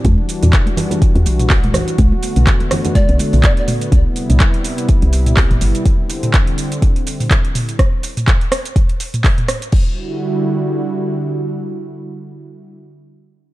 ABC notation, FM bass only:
X:1
M:4/4
L:1/16
Q:"Swing 16ths" 1/4=124
K:Em
V:1 name="FM bass" clef=bass
E,, z2 E,, z4 z E,, B,,,4- B,,, z | B,,, z2 B,,, z4 z B,,, z B,,, z4 | C,, z2 C,, z4 z C,,4 G,,, G,,, z | z16 |
z16 | z16 | z16 |]